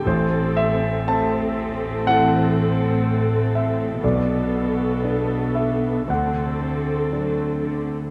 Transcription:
<<
  \new Staff \with { instrumentName = "Grand piano" } { \time 4/4 \key a \dorian \tempo 4 = 59 << { c''8 e''8 a''4 fis''4. e''8 | d''4. e''8 fis''4 r4 | } \\ { a,,4 c'4 <e' a'>2 | b,,4 <d' a'>4 d,4 <d' a'>4 | } >> }
  \new Staff \with { instrumentName = "Viola section" } { \time 4/4 \key a \dorian <c' a'>4 <c' a'>2. | <b a'>2 <c' a'>2 | }
  \new Staff \with { instrumentName = "Harp" } { \time 4/4 \key a \dorian <a, a'>8 c'8 a'8 e'8 e8 c'8 a'8 e'8 | b,8 b8 a'8 d'8 d8 c'8 a'8 d'8 | }
  \new Staff \with { instrumentName = "Cello section" } { \clef bass \time 4/4 \key a \dorian a,1 | b,2 d4 fis8 d8 | }
>>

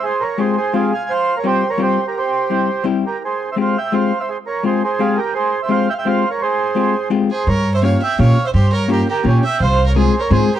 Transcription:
<<
  \new Staff \with { instrumentName = "Accordion" } { \time 3/4 \key f \minor \tempo 4 = 170 << { c''8 des''8 c''8 c''8 aes'8 aes''8 | f''8. des''16 \tuplet 3/2 { c''4 des''8 c''4 bes'8 } | c''2 r8 bes'8 | c''8. e''16 f''8 g''8 f''8. e''16 |
c''8 des''8 c''8 c''8 aes'8 bes'8 | c''8. e''16 f''8 g''32 f''32 g''16 \tuplet 3/2 { f''4 des''8 } | c''2 r8 c''8 | des''8. e''16 f''8 g''8 f''8. e''16 |
c''8 des''8 bes'8 bes'8 g'8 g''8 | f''8. des''16 \tuplet 3/2 { c''4 des''8 c''4 bes'8 } | } \\ { aes'8 bes'8 aes'8 aes'8 f'8 f''8 | c''8. bes'16 \tuplet 3/2 { g'4 bes'8 g'4 g'8 } | g'2 r8 g'8 | aes'8. c''16 c''8 e''8 c''8. c''16 |
aes'8 bes'8 aes'8 aes'8 f'8 g'8 | aes'8. c''16 c''8 e''16 e''16 \tuplet 3/2 { c''4 bes'8 } | aes'2 r8 aes'8 | bes'8. c''16 des''8 e''8 des''8. c''16 |
g'8 bes'8 g'8 g'8 des'8 e''8 | c''8. bes'16 \tuplet 3/2 { aes'4 bes'8 aes'4 g'8 } | } >> }
  \new Staff \with { instrumentName = "Violin" } { \time 3/4 \key f \minor r2. | r2. | r2. | r2. |
r2. | r2. | r2 r8 aes'8 | bes'8. c''16 des''8 e''8 des''8. c''16 |
g'8 bes'8 g'8 g'8 des'8 e''8 | c''8. bes'16 \tuplet 3/2 { aes'4 bes'8 aes'4 g'8 } | }
  \new Staff \with { instrumentName = "Hollow-body jazz guitar" } { \time 3/4 \key f \minor r4 <aes c' f' g'>8 r8 <aes c' f' g'>8 r8 | r4 <g c' f' g'>8 r8 <g c' f' g'>8 r8 | r4 <g c' e' g'>8 r8 <g c' e' g'>8 r8 | r4 <aes c' f' g'>8 r8 <aes c' f' g'>8 r8 |
r4 <aes c' f' g'>8 r8 <aes c' f' g'>8 r8 | r4 <aes c' f' g'>8 r8 <aes c' f' g'>8 r8 | r4 <aes c' f' g'>8 r8 <aes c' f' g'>8 r8 | r4 <bes des' f' g'>8 r8 <bes des' f' g'>8 r8 |
r4 <bes des' f' g'>8 r8 <bes des' f' g'>8 r8 | r4 <aes c' f' aes'>8 r8 <aes c' f' aes'>8 r8 | }
  \new Staff \with { instrumentName = "Upright bass" } { \clef bass \time 3/4 \key f \minor r2. | r2. | r2. | r2. |
r2. | r2. | r2. | g,2 bes,8 r8 |
g,2 bes,8 r8 | c,2 aes,8 r8 | }
>>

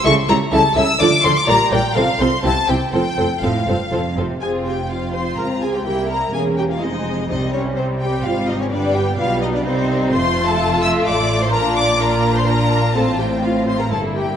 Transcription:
<<
  \new Staff \with { instrumentName = "Violin section" } { \time 3/4 \key f \major \tempo 4 = 126 cis'''8 bes''8 a''8 e'''8 d'''8 c'''16 d'''16 | bes''8 g''8 f''8 c'''8 a''8 g''8 | g''4 f''4. r8 | \key f \minor aes''8 g''8 f''8 c'''8 bes''8 aes''16 g''16 |
g''8 bes''8 aes''8 g''16 f''16 ees''4 | ees''8 des''8 c''8 g''8 f''8 ees''16 des''16 | d''8 g''8 f''8 ees''16 d''16 c''4 | \key f \major c'''8. a''8. e'''8 d'''8. c'''16 |
bes''8 d'''8 bes''8. c'''16 bes''4 | a''8 g''8 f''8 c'''16 bes''16 a''8 g''8 | }
  \new Staff \with { instrumentName = "Violin section" } { \time 3/4 \key f \major << { <a' e''>8 <a' e''>8 <a' e''>8 <a' e''>8 <a' d''>8 <a' d''>8 | <bes' d''>8 <bes' d''>8 <a' c''>8 <a' c''>8 <g' c''>8 <g' c''>8 | <a' c''>8 <a' c''>8 <a' c''>8 <a' c''>8 <a' c''>8 <a' c''>8 | \key f \minor f'4 f'2 |
e'4 des'4 c'4 | c'4 c'2 | b4 b4 ees'4 | \key f \major f'2. |
f'4 f'4 f'4 | f'4 f'4 e'4 | } \\ { r2. | r2. | r2. | c'4 c'2 |
bes2 aes4 | g4 g2 | g4 g4 g4 | a2. |
d'4 d'4 d'4 | c'4 c'4 bes4 | } >> }
  \new Staff \with { instrumentName = "Viola section" } { \time 3/4 \key f \major <g e'>8 <g e'>8 <g e'>8 <g e'>8 <f f'>8 <f f'>8 | <g f'>8 <g f'>8 <c' f'>8 <c' f'>8 <c' e'>8 <c' e'>8 | <c' f'>8 <c' f'>8 <c' f'>8 <c' f'>8 <c' f'>8 <c' f'>8 | \key f \minor aes'8 g'8 f'8 c''8 bes'8 aes'16 g'16 |
g'8 bes'8 aes'8 g'16 f'16 ees'4 | ees'8 des'8 c'8 g'8 f'8 ees'16 des'16 | d'8 g'8 f'8 ees'16 d'16 c'4 | \key f \major c''8. a'8. e''8 d''8. c''16 |
bes'8 d''8 bes'8. c''16 bes'4 | a'8 g'8 f'8 c''16 bes'16 a'8 g'8 | }
  \new Staff \with { instrumentName = "Cello section" } { \clef bass \time 3/4 \key f \major cis8 cis8 cis8 cis8 d8 d8 | bes,8 bes,8 c8 c8 c8 c8 | f,8 f,8 a,8 g,8 f,8 c8 | \key f \minor f,2 des,4 |
c,4 e,4 f,4 | c2 aes,4 | g,4 b,4 c4 | \key f \major f,2 a,4 |
bes,2. | a,2 g,4 | }
  \new Staff \with { instrumentName = "Double bass section" } { \clef bass \time 3/4 \key f \major cis,8 cis,8 cis,8 cis,8 d,8 d,8 | bes,,8 bes,,8 c,8 c,8 c,8 c,8 | f,,8 f,,8 f,,8 f,,8 f,,8 f,,8 | \key f \minor f,,2 des,4 |
c,4 e,,4 f,,4 | c,2 aes,,4 | g,,4 b,,4 c,4 | \key f \major f,,2 a,,4 |
bes,,2. | a,,2 g,,4 | }
>>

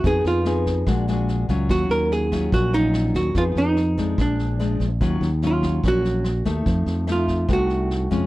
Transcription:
<<
  \new Staff \with { instrumentName = "Hollow-body jazz guitar" } { \time 4/4 \key ees \minor \tempo 4 = 145 aes'8 f'4 r2 r8 | ges'8 bes'8 aes'4 ges'8 ees'4 ges'8 | f'8 ees'4. d'4. r8 | r4 f'4 ges'4. r8 |
r4 f'4 ges'4. r8 | }
  \new Staff \with { instrumentName = "Nylon-string guitar" } { \time 4/4 \key ees \minor << { <ces' ees' aes'>4 <ces' ees' aes'>4 <aes d' fis'>8 <aes d' fis'>4 <fis cis' f'>8~ | <fis cis' f'>4. <ges des' f'>4 <ges des' f'>4. | <ces' ees' aes'>4 r8 <f aes d'>4. <f aes d'>8 r8 | <ges des' f'>8 r8 <ges des' f'>4 <ges des'>4 r8 <a ees'>8~ |
<a ees'>4 <a ees'>4 <a ees' ges'>4. <aes des' f'>8 | } \\ { f2 bes,2 | ees2 bes,2 | f2 bes,2 | ees2 bes,2 |
f2 c2 | } >> }
  \new Staff \with { instrumentName = "Fingered electric bass" } { \clef bass \time 4/4 \key ees \minor f,8 f,4. bes,,4. cis,8 | ees,8 ees,4. bes,,4. ees,8 | f,8 f,4. bes,,4. bes,,8 | ees,8 ees,4. bes,,4. ees,8 |
f,8 f,4. c,4. f,8 | }
  \new DrumStaff \with { instrumentName = "Drums" } \drummode { \time 4/4 <bd sn>8 sn8 <ss sn>8 <bd sn>8 <bd ss sn>8 sn8 sn8 <bd sn>8 | <bd ss sn>8 sn8 sn8 <bd ss sn>8 <bd sn>8 sn8 <ss sn>8 <bd sn>8 | <bd sn>8 sn8 <ss sn>8 <bd sn>8 <bd ss sn>8 sn8 sn8 <bd sn>8 | <bd ss sn>8 sn8 sn8 <bd ss sn>8 <bd sn>8 sn8 <ss sn>8 <bd sn>8 |
<bd sn>8 sn8 <ss sn>8 <bd sn>8 <bd ss sn>8 sn8 sn8 <bd sn>8 | }
>>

